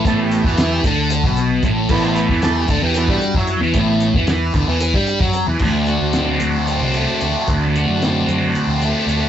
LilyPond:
<<
  \new Staff \with { instrumentName = "Transistor combo organ" } { \time 7/8 \key d \mixolydian \tempo 4 = 113 a'16 g'8 fis'16 e'16 g'16 a'8 r4. | b'16 c''16 b'8 a'16 g'16 a'16 g'16 fis'8 fis'16 e'8 r16 | r2. r8 | <a' d'' fis'' c'''>2.~ <a' d'' fis'' c'''>8~ |
<a' d'' fis'' c'''>2.~ <a' d'' fis'' c'''>8 | }
  \new Staff \with { instrumentName = "Transistor combo organ" } { \time 7/8 \key d \mixolydian <e a b>4. r2 | <e a b>4. r8 <e a b>8 r4 | <e a b>8 r4 <e a b>8 r4. | r2. r8 |
r2. r8 | }
  \new Staff \with { instrumentName = "Distorted electric guitar" } { \clef bass \time 7/8 \key d \mixolydian a,8. e8. d8. b,8. a,8 | a,8. e8. d16 e8 g8 fis8 e16 | a,8. e8. d16 e8 g8 fis8 e16 | d,8 fis'8 c'8 fis'8 c'8 a8 fis'8 |
d,8 fis'8 c'8 fis'8 c'8 a8 fis'8 | }
  \new Staff \with { instrumentName = "Fingered electric bass" } { \clef bass \time 7/8 \key d \mixolydian a,,8. e,8. d,8. b,,8. a,,8 | a,,8. e,8. d,16 e,8 g,8 fis,8 e,16 | a,,8. e,8. d,16 e,8 g,8 fis,8 e,16 | d,8. d,8. d,8. c,8 r16 d,16 r16 |
d,8. fis,8. fis,8 r16 d,8 r16 d,8 | }
  \new DrumStaff \with { instrumentName = "Drums" } \drummode { \time 7/8 <hh bd>8 hh16 bd16 <hh sn>8 <hh bd>8 hh16 bd16 hh8 <hh bd sn>8 | <cymc bd>8 hh16 bd16 <hh sn>8 <hh bd>8 hh16 bd16 hh16 bd16 hh8 | <hh bd>8 hh16 bd16 <hh sn>8 <hh bd>8 hh16 bd16 hh16 bd16 hh8 | <cymc bd>8 hh8 <hh sn>8 hh8 hh8 hh8 hh8 |
<hh bd>8 hh8 <hh sn>8 hh8 hh8 <hh sn>8 hh8 | }
>>